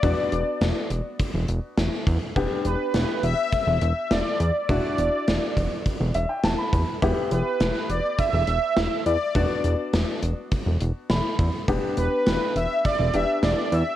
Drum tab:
HH |xxxxxxxx|xxxxxxxx|xxxxxxxx|xxxxxxxx|
SD |--o---o-|--o---o-|--o---o-|--o---o-|
BD |o---o--o|o---o---|o--oo--o|o---o---|

HH |xxxxxxxx|xxxxxxxx|
SD |--o---o-|--o---o-|
BD |o---o--o|o---o---|